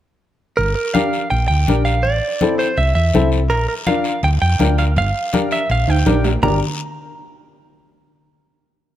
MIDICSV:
0, 0, Header, 1, 5, 480
1, 0, Start_track
1, 0, Tempo, 364964
1, 765, Time_signature, 4, 2, 24, 8
1, 11784, End_track
2, 0, Start_track
2, 0, Title_t, "Clean electric guitar"
2, 0, Program_c, 0, 27
2, 749, Note_on_c, 0, 70, 87
2, 973, Note_off_c, 0, 70, 0
2, 989, Note_on_c, 0, 70, 76
2, 1220, Note_off_c, 0, 70, 0
2, 1236, Note_on_c, 0, 77, 89
2, 1710, Note_off_c, 0, 77, 0
2, 1715, Note_on_c, 0, 79, 97
2, 1928, Note_off_c, 0, 79, 0
2, 1943, Note_on_c, 0, 79, 102
2, 2427, Note_off_c, 0, 79, 0
2, 2433, Note_on_c, 0, 77, 87
2, 2669, Note_on_c, 0, 74, 99
2, 2686, Note_off_c, 0, 77, 0
2, 3346, Note_off_c, 0, 74, 0
2, 3406, Note_on_c, 0, 72, 84
2, 3651, Note_on_c, 0, 76, 91
2, 3653, Note_off_c, 0, 72, 0
2, 3866, Note_off_c, 0, 76, 0
2, 3882, Note_on_c, 0, 76, 92
2, 4330, Note_off_c, 0, 76, 0
2, 4600, Note_on_c, 0, 70, 92
2, 4830, Note_off_c, 0, 70, 0
2, 4846, Note_on_c, 0, 70, 75
2, 4912, Note_off_c, 0, 70, 0
2, 5088, Note_on_c, 0, 77, 79
2, 5534, Note_off_c, 0, 77, 0
2, 5579, Note_on_c, 0, 79, 90
2, 5645, Note_off_c, 0, 79, 0
2, 5809, Note_on_c, 0, 79, 94
2, 6255, Note_off_c, 0, 79, 0
2, 6295, Note_on_c, 0, 77, 79
2, 6361, Note_off_c, 0, 77, 0
2, 6550, Note_on_c, 0, 77, 96
2, 7210, Note_off_c, 0, 77, 0
2, 7265, Note_on_c, 0, 76, 81
2, 7481, Note_off_c, 0, 76, 0
2, 7515, Note_on_c, 0, 77, 92
2, 7757, Note_off_c, 0, 77, 0
2, 7757, Note_on_c, 0, 79, 83
2, 8223, Note_off_c, 0, 79, 0
2, 8457, Note_on_c, 0, 82, 83
2, 8677, Note_off_c, 0, 82, 0
2, 11784, End_track
3, 0, Start_track
3, 0, Title_t, "Upright piano"
3, 0, Program_c, 1, 0
3, 1236, Note_on_c, 1, 62, 64
3, 1243, Note_on_c, 1, 70, 74
3, 1245, Note_on_c, 1, 67, 66
3, 1576, Note_off_c, 1, 62, 0
3, 1580, Note_off_c, 1, 70, 0
3, 1581, Note_off_c, 1, 67, 0
3, 2211, Note_on_c, 1, 62, 63
3, 2220, Note_on_c, 1, 67, 63
3, 2224, Note_on_c, 1, 70, 73
3, 2544, Note_off_c, 1, 62, 0
3, 2548, Note_off_c, 1, 67, 0
3, 2550, Note_off_c, 1, 70, 0
3, 3170, Note_on_c, 1, 60, 69
3, 3178, Note_on_c, 1, 64, 63
3, 3183, Note_on_c, 1, 69, 75
3, 3504, Note_off_c, 1, 60, 0
3, 3508, Note_off_c, 1, 64, 0
3, 3510, Note_off_c, 1, 69, 0
3, 4133, Note_on_c, 1, 60, 69
3, 4138, Note_on_c, 1, 64, 66
3, 4139, Note_on_c, 1, 69, 81
3, 4466, Note_off_c, 1, 60, 0
3, 4468, Note_off_c, 1, 64, 0
3, 4469, Note_off_c, 1, 69, 0
3, 5090, Note_on_c, 1, 62, 66
3, 5094, Note_on_c, 1, 65, 69
3, 5101, Note_on_c, 1, 70, 80
3, 5425, Note_off_c, 1, 62, 0
3, 5426, Note_off_c, 1, 65, 0
3, 5430, Note_off_c, 1, 70, 0
3, 6042, Note_on_c, 1, 62, 64
3, 6049, Note_on_c, 1, 65, 58
3, 6052, Note_on_c, 1, 70, 77
3, 6381, Note_off_c, 1, 62, 0
3, 6384, Note_off_c, 1, 65, 0
3, 6386, Note_off_c, 1, 70, 0
3, 7010, Note_on_c, 1, 62, 72
3, 7014, Note_on_c, 1, 67, 64
3, 7024, Note_on_c, 1, 70, 82
3, 7346, Note_off_c, 1, 62, 0
3, 7348, Note_off_c, 1, 67, 0
3, 7352, Note_off_c, 1, 70, 0
3, 7968, Note_on_c, 1, 62, 68
3, 7971, Note_on_c, 1, 67, 63
3, 7975, Note_on_c, 1, 70, 77
3, 8305, Note_off_c, 1, 62, 0
3, 8306, Note_off_c, 1, 67, 0
3, 8308, Note_off_c, 1, 70, 0
3, 8453, Note_on_c, 1, 70, 86
3, 8456, Note_on_c, 1, 62, 79
3, 8457, Note_on_c, 1, 67, 74
3, 8674, Note_off_c, 1, 70, 0
3, 8676, Note_off_c, 1, 62, 0
3, 8676, Note_off_c, 1, 67, 0
3, 11784, End_track
4, 0, Start_track
4, 0, Title_t, "Fingered electric bass"
4, 0, Program_c, 2, 33
4, 767, Note_on_c, 2, 31, 107
4, 958, Note_off_c, 2, 31, 0
4, 1728, Note_on_c, 2, 34, 85
4, 1918, Note_off_c, 2, 34, 0
4, 1971, Note_on_c, 2, 38, 82
4, 2161, Note_off_c, 2, 38, 0
4, 2209, Note_on_c, 2, 34, 79
4, 2692, Note_off_c, 2, 34, 0
4, 2692, Note_on_c, 2, 33, 106
4, 2881, Note_off_c, 2, 33, 0
4, 3649, Note_on_c, 2, 36, 85
4, 3839, Note_off_c, 2, 36, 0
4, 3885, Note_on_c, 2, 40, 85
4, 4077, Note_off_c, 2, 40, 0
4, 4130, Note_on_c, 2, 36, 83
4, 4616, Note_off_c, 2, 36, 0
4, 4616, Note_on_c, 2, 34, 104
4, 4804, Note_off_c, 2, 34, 0
4, 5564, Note_on_c, 2, 38, 88
4, 5757, Note_off_c, 2, 38, 0
4, 5810, Note_on_c, 2, 41, 82
4, 6001, Note_off_c, 2, 41, 0
4, 6041, Note_on_c, 2, 38, 86
4, 6525, Note_on_c, 2, 31, 107
4, 6545, Note_off_c, 2, 38, 0
4, 6719, Note_off_c, 2, 31, 0
4, 7491, Note_on_c, 2, 34, 79
4, 7682, Note_off_c, 2, 34, 0
4, 7728, Note_on_c, 2, 38, 85
4, 7920, Note_off_c, 2, 38, 0
4, 7976, Note_on_c, 2, 34, 84
4, 8357, Note_off_c, 2, 34, 0
4, 8446, Note_on_c, 2, 31, 94
4, 8671, Note_off_c, 2, 31, 0
4, 11784, End_track
5, 0, Start_track
5, 0, Title_t, "Drums"
5, 767, Note_on_c, 9, 74, 69
5, 773, Note_on_c, 9, 63, 32
5, 898, Note_off_c, 9, 74, 0
5, 904, Note_off_c, 9, 63, 0
5, 1246, Note_on_c, 9, 73, 68
5, 1247, Note_on_c, 9, 63, 73
5, 1378, Note_off_c, 9, 63, 0
5, 1378, Note_off_c, 9, 73, 0
5, 1487, Note_on_c, 9, 73, 65
5, 1618, Note_off_c, 9, 73, 0
5, 1724, Note_on_c, 9, 74, 67
5, 1732, Note_on_c, 9, 63, 37
5, 1856, Note_off_c, 9, 74, 0
5, 1863, Note_off_c, 9, 63, 0
5, 2199, Note_on_c, 9, 73, 69
5, 2212, Note_on_c, 9, 63, 70
5, 2331, Note_off_c, 9, 73, 0
5, 2344, Note_off_c, 9, 63, 0
5, 2443, Note_on_c, 9, 73, 66
5, 2575, Note_off_c, 9, 73, 0
5, 2691, Note_on_c, 9, 63, 33
5, 2692, Note_on_c, 9, 74, 70
5, 2823, Note_off_c, 9, 63, 0
5, 2824, Note_off_c, 9, 74, 0
5, 3168, Note_on_c, 9, 63, 69
5, 3169, Note_on_c, 9, 73, 68
5, 3300, Note_off_c, 9, 63, 0
5, 3300, Note_off_c, 9, 73, 0
5, 3412, Note_on_c, 9, 73, 65
5, 3544, Note_off_c, 9, 73, 0
5, 3645, Note_on_c, 9, 74, 66
5, 3650, Note_on_c, 9, 63, 34
5, 3777, Note_off_c, 9, 74, 0
5, 3782, Note_off_c, 9, 63, 0
5, 4122, Note_on_c, 9, 73, 73
5, 4140, Note_on_c, 9, 63, 75
5, 4253, Note_off_c, 9, 73, 0
5, 4271, Note_off_c, 9, 63, 0
5, 4364, Note_on_c, 9, 73, 63
5, 4496, Note_off_c, 9, 73, 0
5, 4603, Note_on_c, 9, 74, 72
5, 4608, Note_on_c, 9, 63, 33
5, 4613, Note_on_c, 9, 65, 68
5, 4734, Note_off_c, 9, 74, 0
5, 4740, Note_off_c, 9, 63, 0
5, 4745, Note_off_c, 9, 65, 0
5, 5079, Note_on_c, 9, 73, 69
5, 5085, Note_on_c, 9, 63, 73
5, 5085, Note_on_c, 9, 65, 63
5, 5211, Note_off_c, 9, 73, 0
5, 5216, Note_off_c, 9, 63, 0
5, 5216, Note_off_c, 9, 65, 0
5, 5317, Note_on_c, 9, 73, 68
5, 5327, Note_on_c, 9, 65, 69
5, 5449, Note_off_c, 9, 73, 0
5, 5459, Note_off_c, 9, 65, 0
5, 5563, Note_on_c, 9, 74, 70
5, 5565, Note_on_c, 9, 65, 68
5, 5571, Note_on_c, 9, 63, 36
5, 5694, Note_off_c, 9, 74, 0
5, 5697, Note_off_c, 9, 65, 0
5, 5703, Note_off_c, 9, 63, 0
5, 6047, Note_on_c, 9, 65, 65
5, 6047, Note_on_c, 9, 66, 66
5, 6049, Note_on_c, 9, 63, 69
5, 6057, Note_on_c, 9, 73, 72
5, 6179, Note_off_c, 9, 65, 0
5, 6179, Note_off_c, 9, 66, 0
5, 6180, Note_off_c, 9, 63, 0
5, 6189, Note_off_c, 9, 73, 0
5, 6290, Note_on_c, 9, 65, 66
5, 6293, Note_on_c, 9, 73, 69
5, 6422, Note_off_c, 9, 65, 0
5, 6425, Note_off_c, 9, 73, 0
5, 6528, Note_on_c, 9, 74, 72
5, 6533, Note_on_c, 9, 65, 66
5, 6535, Note_on_c, 9, 63, 34
5, 6659, Note_off_c, 9, 74, 0
5, 6664, Note_off_c, 9, 65, 0
5, 6667, Note_off_c, 9, 63, 0
5, 7010, Note_on_c, 9, 65, 66
5, 7010, Note_on_c, 9, 73, 71
5, 7018, Note_on_c, 9, 63, 68
5, 7141, Note_off_c, 9, 73, 0
5, 7142, Note_off_c, 9, 65, 0
5, 7150, Note_off_c, 9, 63, 0
5, 7247, Note_on_c, 9, 73, 67
5, 7251, Note_on_c, 9, 65, 67
5, 7379, Note_off_c, 9, 73, 0
5, 7383, Note_off_c, 9, 65, 0
5, 7490, Note_on_c, 9, 65, 64
5, 7494, Note_on_c, 9, 74, 67
5, 7501, Note_on_c, 9, 63, 34
5, 7622, Note_off_c, 9, 65, 0
5, 7625, Note_off_c, 9, 74, 0
5, 7632, Note_off_c, 9, 63, 0
5, 7728, Note_on_c, 9, 65, 78
5, 7860, Note_off_c, 9, 65, 0
5, 7971, Note_on_c, 9, 65, 86
5, 7975, Note_on_c, 9, 73, 73
5, 7977, Note_on_c, 9, 63, 76
5, 8102, Note_off_c, 9, 65, 0
5, 8107, Note_off_c, 9, 73, 0
5, 8108, Note_off_c, 9, 63, 0
5, 8212, Note_on_c, 9, 66, 93
5, 8212, Note_on_c, 9, 73, 69
5, 8343, Note_off_c, 9, 73, 0
5, 8344, Note_off_c, 9, 66, 0
5, 8453, Note_on_c, 9, 66, 87
5, 8455, Note_on_c, 9, 74, 94
5, 8463, Note_on_c, 9, 64, 93
5, 8585, Note_off_c, 9, 66, 0
5, 8586, Note_off_c, 9, 74, 0
5, 8595, Note_off_c, 9, 64, 0
5, 11784, End_track
0, 0, End_of_file